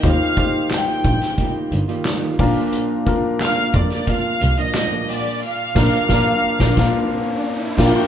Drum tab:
CC |----------------|----------------|--x-----------x-|
HH |x-x-x-xxx-xxx-o-|x-x-x-xxx-xxx-o-|----------------|
CP |----x-------x---|----x-------x---|----------------|
SD |----o--o----o---|----o--o----o---|--o-o--oo-----o-|
BD |o-o---o-o-----o-|--o---o-o-------|--o-o--oo-----o-|